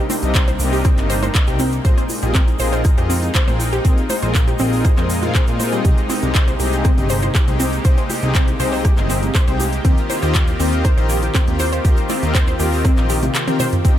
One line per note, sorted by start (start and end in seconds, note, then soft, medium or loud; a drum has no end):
0.00 1.81 C3 medium
0.00 1.81 G3 medium
0.00 5.81 A#3 medium
0.00 1.81 D4 medium
0.00 9.81 D#4 medium
0.10 0.16 C4 loud
0.10 open hi-hat loud
0.10 high conga loud
0.10 low conga loud
0.10 shaker loud
0.22 0.55 C2 medium
0.22 0.37 C3 medium
0.22 0.37 C4 medium
0.22 0.37 D#4 medium
0.22 0.37 G4 medium
0.22 0.37 A#4 medium
0.22 0.37 D#5 medium
0.22 closed hi-hat soft
0.22 shaker soft
0.34 0.41 C5 loud
0.34 kick loud
0.34 clap loud
0.34 closed hi-hat loud
0.34 shaker medium
0.48 0.51 C5 medium
0.48 closed hi-hat soft
0.48 high conga medium
0.48 shaker soft
0.59 0.92 C2 medium
0.59 0.83 C3 medium
0.59 0.83 C4 medium
0.59 0.83 D#4 medium
0.59 0.83 G4 medium
0.59 0.83 A#4 medium
0.59 0.83 D#5 loud
0.59 open hi-hat loud
0.59 shaker loud
0.73 0.82 G4 medium
0.73 open hi-hat medium
0.73 shaker soft
0.84 0.91 C4 loud
0.84 kick loud
0.84 cross-stick medium
0.84 closed hi-hat medium
0.84 high conga loud
0.84 shaker medium
0.98 1.30 G1 loud
0.98 1.12 C3 medium
0.98 1.12 C4 medium
0.98 1.12 D#4 medium
0.98 1.12 G4 medium
0.98 1.12 A#4 medium
0.98 1.12 D#5 loud
0.98 clap soft
0.98 closed hi-hat soft
0.98 shaker soft
1.10 1.16 C5 loud
1.10 open hi-hat loud
1.10 shaker medium
1.23 1.26 C5 medium
1.23 closed hi-hat soft
1.23 high conga medium
1.23 low conga medium
1.23 shaker soft
1.35 kick loud
1.35 cross-stick medium
1.35 clap loud
1.35 closed hi-hat medium
1.35 shaker medium
1.47 1.80 C2 medium
1.47 1.62 C3 medium
1.47 1.62 C4 medium
1.47 1.62 D#4 medium
1.47 1.57 G4 medium
1.47 1.62 G4 medium
1.47 1.62 A#4 medium
1.47 1.62 G5 medium
1.47 closed hi-hat soft
1.47 shaker soft
1.59 1.66 C4 loud
1.59 open hi-hat loud
1.59 high conga loud
1.59 low conga medium
1.59 shaker loud
1.72 closed hi-hat soft
1.72 shaker soft
1.85 1.94 A#1 loud
1.85 2.00 A#2 medium
1.85 9.81 G#3 medium
1.85 2.00 C4 medium
1.85 2.00 F4 medium
1.85 2.00 G#4 medium
1.85 2.00 A#4 medium
1.85 1.91 C5 loud
1.85 2.00 D#5 medium
1.85 kick loud
1.85 closed hi-hat medium
1.85 shaker medium
1.98 2.01 C5 medium
1.98 closed hi-hat soft
1.98 shaker soft
2.09 open hi-hat loud
2.09 high conga loud
2.09 shaker medium
2.23 2.55 A#1 medium
2.23 2.37 A#2 medium
2.23 2.37 C4 medium
2.23 2.37 F4 medium
2.23 2.32 G4 medium
2.23 2.37 G#4 medium
2.23 2.37 A#4 medium
2.23 2.37 D#5 medium
2.23 closed hi-hat soft
2.23 shaker soft
2.34 2.41 C4 loud
2.34 kick loud
2.34 clap loud
2.34 closed hi-hat medium
2.34 shaker medium
2.48 closed hi-hat soft
2.48 high conga medium
2.48 shaker soft
2.59 2.92 A#1 medium
2.59 2.83 A#2 medium
2.59 2.83 C4 medium
2.59 2.83 F4 medium
2.59 2.83 G#4 medium
2.59 2.83 A#4 medium
2.59 2.66 C5 loud
2.59 2.83 D#5 loud
2.59 open hi-hat loud
2.59 shaker loud
2.73 2.76 C5 medium
2.73 closed hi-hat soft
2.73 shaker soft
2.84 kick loud
2.84 cross-stick medium
2.84 closed hi-hat medium
2.84 high conga loud
2.84 shaker medium
2.98 3.30 F2 loud
2.98 3.12 A#2 medium
2.98 3.12 C4 medium
2.98 3.12 F4 medium
2.98 3.07 G4 medium
2.98 3.12 G#4 medium
2.98 3.12 A#4 medium
2.98 3.12 D#5 loud
2.98 closed hi-hat soft
2.98 shaker soft
3.10 3.16 C4 loud
3.10 open hi-hat loud
3.10 shaker medium
3.23 closed hi-hat soft
3.23 high conga medium
3.23 shaker soft
3.34 3.41 C5 loud
3.34 kick loud
3.34 cross-stick medium
3.34 clap loud
3.34 closed hi-hat loud
3.34 shaker medium
3.48 3.80 A#1 medium
3.48 3.62 A#2 medium
3.48 3.62 C4 medium
3.48 3.62 F4 medium
3.48 3.62 G#4 medium
3.48 3.62 A#4 medium
3.48 3.51 C5 medium
3.48 3.62 G5 medium
3.48 closed hi-hat soft
3.48 low conga medium
3.48 shaker soft
3.60 open hi-hat loud
3.60 high conga medium
3.60 shaker medium
3.72 3.82 G4 medium
3.72 closed hi-hat soft
3.72 shaker soft
3.85 3.94 A#1 loud
3.85 4.00 A#2 medium
3.85 3.91 C4 loud
3.85 4.00 C4 medium
3.85 4.00 F4 medium
3.85 4.00 G#4 medium
3.85 4.00 A#4 medium
3.85 4.00 D#5 medium
3.85 kick loud
3.85 closed hi-hat medium
3.85 shaker medium
3.98 closed hi-hat soft
3.98 shaker soft
4.10 4.16 C5 loud
4.10 open hi-hat loud
4.10 high conga loud
4.10 low conga medium
4.10 shaker loud
4.22 4.55 A#1 medium
4.22 4.37 A#2 medium
4.22 4.37 C4 medium
4.22 4.37 F4 medium
4.22 4.37 G#4 medium
4.22 4.37 A#4 medium
4.22 4.26 C5 medium
4.22 4.37 D#5 medium
4.22 closed hi-hat soft
4.22 shaker soft
4.35 kick loud
4.35 clap loud
4.35 closed hi-hat medium
4.35 shaker medium
4.48 4.57 G4 medium
4.48 closed hi-hat soft
4.48 high conga medium
4.48 shaker soft
4.59 4.92 A#1 medium
4.59 4.83 A#2 medium
4.59 4.66 C4 loud
4.59 4.83 C4 medium
4.59 4.83 F4 medium
4.59 4.83 G#4 medium
4.59 4.83 A#4 medium
4.59 4.83 D#5 loud
4.59 open hi-hat loud
4.59 shaker loud
4.73 open hi-hat medium
4.73 shaker soft
4.85 4.91 C5 loud
4.85 kick loud
4.85 cross-stick medium
4.85 closed hi-hat medium
4.85 high conga medium
4.85 shaker medium
4.98 5.30 F2 loud
4.98 5.12 A#2 medium
4.98 5.12 C4 medium
4.98 5.12 F4 medium
4.98 5.12 G#4 medium
4.98 5.12 A#4 medium
4.98 5.01 C5 medium
4.98 5.12 D#5 loud
4.98 clap soft
4.98 closed hi-hat soft
4.98 shaker soft
5.10 open hi-hat loud
5.10 shaker loud
5.23 5.37 A#2 loud
5.23 5.37 C4 medium
5.23 5.26 F4 medium
5.23 5.37 F4 medium
5.23 5.37 G#4 medium
5.23 5.37 A#4 medium
5.23 5.37 F5 loud
5.23 closed hi-hat soft
5.23 high conga medium
5.23 low conga medium
5.23 shaker soft
5.35 5.41 C5 loud
5.35 kick loud
5.35 cross-stick medium
5.35 clap loud
5.35 closed hi-hat medium
5.35 shaker medium
5.47 5.80 A#2 medium
5.47 5.58 A#2 medium
5.47 5.58 C4 medium
5.47 5.58 F4 medium
5.47 5.58 G#4 medium
5.47 5.58 A#4 medium
5.47 5.58 D#5 medium
5.47 closed hi-hat soft
5.47 shaker soft
5.60 5.81 C3 medium
5.60 5.81 C4 medium
5.60 5.81 F4 medium
5.60 5.81 G#4 medium
5.60 5.81 A#4 medium
5.60 5.66 C5 medium
5.60 5.81 D#5 medium
5.60 open hi-hat loud
5.60 high conga medium
5.60 low conga medium
5.60 shaker loud
5.72 5.79 G3 medium
5.72 closed hi-hat soft
5.72 shaker soft
5.85 5.94 C2 loud
5.85 9.81 C3 medium
5.85 6.00 C3 medium
5.85 13.81 A#3 medium
5.85 6.00 C4 medium
5.85 6.00 D#4 medium
5.85 5.95 G4 medium
5.85 6.00 G4 medium
5.85 13.81 G4 medium
5.85 6.00 G#4 medium
5.85 6.00 D#5 medium
5.85 kick loud
5.85 closed hi-hat medium
5.85 shaker medium
5.98 closed hi-hat soft
5.98 shaker soft
6.10 6.16 C4 loud
6.10 open hi-hat loud
6.10 high conga medium
6.10 shaker medium
6.23 6.55 C2 medium
6.23 6.37 C3 medium
6.23 6.37 C4 medium
6.23 6.37 D#4 medium
6.23 6.37 G4 medium
6.23 6.37 G#4 medium
6.23 6.37 D#5 loud
6.23 closed hi-hat soft
6.23 shaker soft
6.35 6.41 C5 loud
6.35 kick loud
6.35 clap loud
6.35 closed hi-hat medium
6.35 shaker medium
6.48 6.51 C5 medium
6.48 closed hi-hat soft
6.48 high conga medium
6.48 shaker soft
6.60 6.92 C2 medium
6.60 6.83 C3 medium
6.60 6.83 C4 medium
6.60 6.83 D#4 medium
6.60 6.70 G4 medium
6.60 6.83 G4 medium
6.60 6.83 G#4 medium
6.60 6.83 D#5 loud
6.60 open hi-hat loud
6.60 shaker medium
6.73 closed hi-hat soft
6.73 shaker soft
6.85 6.91 C4 loud
6.85 kick loud
6.85 cross-stick medium
6.85 closed hi-hat medium
6.85 high conga medium
6.85 shaker medium
6.98 7.30 G1 loud
6.98 7.12 C3 medium
6.98 7.12 C4 medium
6.98 7.12 D#4 medium
6.98 7.12 G4 medium
6.98 7.12 G#4 medium
6.98 7.12 D#5 medium
6.98 closed hi-hat soft
6.98 shaker soft
7.09 7.16 C5 loud
7.09 open hi-hat loud
7.09 shaker loud
7.22 7.26 C5 medium
7.22 closed hi-hat soft
7.22 high conga medium
7.22 shaker soft
7.35 7.45 G4 medium
7.35 kick loud
7.35 cross-stick medium
7.35 clap loud
7.35 closed hi-hat loud
7.35 shaker soft
7.48 7.80 C2 medium
7.48 7.62 C3 medium
7.48 7.62 C4 medium
7.48 7.62 D#4 medium
7.48 7.62 G4 medium
7.48 7.62 G#4 medium
7.48 7.62 G5 medium
7.48 closed hi-hat soft
7.48 low conga medium
7.48 shaker soft
7.60 7.66 C4 loud
7.60 open hi-hat loud
7.60 high conga medium
7.60 shaker loud
7.73 closed hi-hat soft
7.73 shaker soft
7.85 7.94 C2 loud
7.85 8.00 C3 medium
7.85 8.00 C4 medium
7.85 8.00 D#4 medium
7.85 8.00 G4 medium
7.85 8.00 G#4 medium
7.85 7.91 C5 loud
7.85 8.00 D#5 medium
7.85 kick loud
7.85 closed hi-hat loud
7.85 shaker medium
7.97 8.01 C5 medium
7.97 closed hi-hat soft
7.97 shaker soft
8.10 8.20 G4 medium
8.10 open hi-hat loud
8.10 high conga medium
8.10 low conga medium
8.10 shaker medium
8.22 8.55 C2 medium
8.22 8.37 C3 medium
8.22 8.37 C4 medium
8.22 8.37 D#4 medium
8.22 8.37 G4 medium
8.22 8.37 G#4 medium
8.22 8.37 D#5 loud
8.22 closed hi-hat soft
8.22 shaker soft
8.34 8.41 C4 loud
8.34 kick loud
8.34 clap loud
8.34 closed hi-hat loud
8.34 shaker medium
8.48 closed hi-hat soft
8.48 high conga medium
8.48 shaker soft
8.60 8.92 C2 medium
8.60 8.83 C3 medium
8.60 8.83 C4 medium
8.60 8.83 D#4 medium
8.60 8.83 G4 medium
8.60 8.83 G#4 medium
8.60 8.66 C5 loud
8.60 8.83 D#5 loud
8.60 open hi-hat loud
8.60 shaker medium
8.73 8.76 C5 medium
8.73 open hi-hat medium
8.73 shaker soft
8.85 8.95 G4 medium
8.85 kick loud
8.85 cross-stick medium
8.85 closed hi-hat medium
8.85 high conga medium
8.85 shaker medium
8.97 9.30 G1 loud
8.97 9.12 C3 medium
8.97 9.12 C4 medium
8.97 9.12 D#4 medium
8.97 9.12 G4 medium
8.97 9.12 G#4 medium
8.97 9.12 D#5 medium
8.97 clap soft
8.97 closed hi-hat soft
8.97 shaker soft
9.10 9.16 C4 loud
9.10 open hi-hat loud
9.10 shaker medium
9.23 closed hi-hat soft
9.23 high conga medium
9.23 low conga medium
9.23 shaker soft
9.35 9.41 C5 loud
9.35 kick loud
9.35 cross-stick medium
9.35 clap loud
9.35 closed hi-hat loud
9.35 shaker medium
9.48 9.80 C2 medium
9.48 9.62 C3 medium
9.48 9.62 C4 medium
9.48 9.62 D#4 medium
9.48 9.62 G4 medium
9.48 9.62 G#4 medium
9.48 9.51 C5 medium
9.48 9.62 G5 medium
9.48 closed hi-hat soft
9.48 shaker soft
9.60 9.70 G4 medium
9.60 open hi-hat loud
9.60 high conga medium
9.60 low conga medium
9.60 shaker medium
9.73 closed hi-hat soft
9.73 shaker soft
9.85 9.94 D#2 loud
9.85 10.00 D#3 medium
9.85 13.81 D#3 medium
9.85 9.91 C4 loud
9.85 10.00 C4 medium
9.85 13.81 C4 medium
9.85 10.00 F4 medium
9.85 13.81 F4 medium
9.85 10.00 G4 medium
9.85 10.00 A#4 medium
9.85 10.00 D#5 medium
9.85 kick loud
9.85 closed hi-hat loud
9.85 shaker soft
9.98 closed hi-hat soft
9.98 shaker soft
10.10 10.16 C5 loud
10.10 open hi-hat loud
10.10 high conga medium
10.10 shaker medium
10.22 10.55 D#2 medium
10.22 10.37 D#3 medium
10.22 10.37 C4 medium
10.22 10.37 F4 medium
10.22 10.37 G4 medium
10.22 10.37 A#4 medium
10.22 10.26 C5 medium
10.22 10.37 D#5 loud
10.22 closed hi-hat soft
10.22 shaker soft
10.35 10.45 G4 medium
10.35 kick loud
10.35 clap loud
10.35 closed hi-hat loud
10.35 shaker medium
10.47 closed hi-hat soft
10.47 high conga medium
10.47 shaker soft
10.60 10.92 D#2 medium
10.60 10.83 D#3 medium
10.60 10.66 C4 loud
10.60 10.83 C4 medium
10.60 10.83 F4 medium
10.60 10.83 G4 medium
10.60 10.83 A#4 medium
10.60 10.83 D#5 loud
10.60 open hi-hat loud
10.60 shaker medium
10.73 closed hi-hat soft
10.73 shaker soft
10.85 10.91 C5 loud
10.85 kick loud
10.85 cross-stick medium
10.85 closed hi-hat medium
10.85 high conga medium
10.85 shaker medium
10.97 11.30 A#1 loud
10.97 11.12 D#3 medium
10.97 11.12 C4 medium
10.97 11.12 F4 medium
10.97 11.12 G4 medium
10.97 11.12 A#4 medium
10.97 11.01 C5 medium
10.97 11.12 D#5 loud
10.97 closed hi-hat soft
10.97 shaker soft
11.09 11.20 G4 medium
11.09 open hi-hat loud
11.09 shaker medium
11.23 closed hi-hat soft
11.23 high conga medium
11.23 shaker soft
11.35 11.41 C4 loud
11.35 kick loud
11.35 cross-stick medium
11.35 clap loud
11.35 closed hi-hat loud
11.35 shaker medium
11.47 11.80 D#2 medium
11.47 11.62 D#3 medium
11.47 11.62 C4 medium
11.47 11.62 F4 medium
11.47 11.62 G4 medium
11.47 11.62 A#4 medium
11.47 11.62 G5 medium
11.47 closed hi-hat soft
11.47 low conga medium
11.47 shaker soft
11.59 11.66 C5 loud
11.59 open hi-hat loud
11.59 high conga medium
11.59 shaker medium
11.73 11.76 C5 medium
11.73 closed hi-hat soft
11.73 shaker soft
11.85 11.94 D#2 loud
11.85 12.00 D#3 medium
11.85 12.00 C4 medium
11.85 12.00 F4 medium
11.85 11.95 G4 medium
11.85 12.00 G4 medium
11.85 12.00 A#4 medium
11.85 12.00 D#5 medium
11.85 kick loud
11.85 closed hi-hat loud
11.85 shaker medium
11.97 closed hi-hat soft
11.97 shaker soft
12.09 12.16 C4 loud
12.09 open hi-hat loud
12.09 high conga loud
12.09 low conga medium
12.09 shaker medium
12.23 12.55 D#2 medium
12.23 12.37 D#3 medium
12.23 12.37 C4 medium
12.23 12.37 F4 medium
12.23 12.37 G4 medium
12.23 12.37 A#4 medium
12.23 12.37 D#5 loud
12.23 closed hi-hat soft
12.23 shaker soft
12.35 12.41 C5 loud
12.35 kick loud
12.35 clap loud
12.35 closed hi-hat loud
12.35 shaker soft
12.47 12.51 C5 medium
12.47 closed hi-hat soft
12.47 high conga medium
12.47 shaker soft
12.60 12.92 D#2 medium
12.60 12.83 D#3 medium
12.60 12.83 C4 medium
12.60 12.83 F4 medium
12.60 12.70 G4 medium
12.60 12.83 G4 medium
12.60 12.83 A#4 medium
12.60 12.83 D#5 medium
12.60 open hi-hat loud
12.60 shaker medium
12.73 open hi-hat medium
12.73 shaker soft
12.85 12.91 C4 loud
12.85 kick loud
12.85 cross-stick medium
12.85 closed hi-hat loud
12.85 high conga loud
12.85 shaker soft
12.97 13.30 A#1 loud
12.97 13.12 D#3 medium
12.97 13.12 C4 medium
12.97 13.12 F4 medium
12.97 13.12 G4 medium
12.97 13.12 A#4 medium
12.97 13.12 D#5 loud
12.97 clap soft
12.97 closed hi-hat soft
12.97 shaker soft
13.09 13.14 G4 loud
13.09 open hi-hat loud
13.09 shaker medium
13.23 13.32 C3 medium
13.23 closed hi-hat soft
13.23 high conga medium
13.23 low conga medium
13.23 shaker soft
13.35 cross-stick medium
13.35 clap loud
13.35 closed hi-hat loud
13.35 shaker medium
13.48 13.62 D#3 medium
13.48 13.54 C4 medium
13.48 13.62 C4 medium
13.48 13.62 F4 medium
13.48 13.62 G4 medium
13.48 13.62 A#4 medium
13.48 13.62 G5 medium
13.48 closed hi-hat soft
13.48 high tom medium
13.48 shaker soft
13.60 13.66 C5 loud
13.60 open hi-hat loud
13.60 mid tom medium
13.60 high conga loud
13.60 low conga medium
13.60 shaker loud
13.72 closed hi-hat soft
13.72 mid tom medium
13.72 shaker soft
13.85 13.94 C2 loud
13.85 13.99 C3 medium
13.85 13.99 G3 medium
13.85 13.99 A#3 medium
13.85 13.91 C4 loud
13.85 13.99 C4 medium
13.85 13.99 D4 medium
13.85 13.99 D#4 medium
13.85 13.99 G4 medium
13.85 13.99 A#4 medium
13.85 13.99 D#5 medium
13.85 kick loud
13.85 closed hi-hat loud
13.85 shaker medium